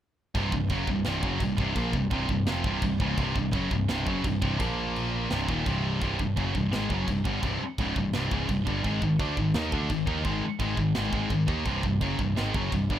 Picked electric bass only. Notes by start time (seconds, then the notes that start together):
0.35 C1
0.52 C1
0.69 F#1
0.87 C1
1.06 C1
1.23 F#1
1.40 C1
1.58 C1
1.75 A#1
1.93 C1
2.11 C1
2.28 C1
2.46 F1
2.64 C1
2.82 C1
3.00 C#1
3.17 C1
3.35 C1
3.53 F#1
3.71 C1
3.89 C1
4.07 F#1
4.24 C1
4.42 C1
4.60 A#1
5.31 C1
5.48 D#1
5.66 C1
6.02 C1
6.19 C1
6.36 F#1
6.55 C1
6.73 G#1
6.89 F#1
7.07 C1
7.26 G1
7.42 C1
7.61 muted picked electric bass stroke
7.78 C#1
7.96 C1
8.13 C1
8.31 C#1
8.49 C1
8.67 G1
8.84 G#1
9.02 G#1
9.19 D2
9.37 G#1
9.54 D#2
9.72 D2
9.90 G#1
10.07 D#2
10.24 G#1
10.59 G#1
10.77 G#1
10.96 G#1
11.12 G#1
11.30 G#1
11.48 D#2
11.66 C1
11.83 C1
12.00 F#1
12.19 C1
12.37 G#1
12.54 F#1
12.72 C1
12.89 G1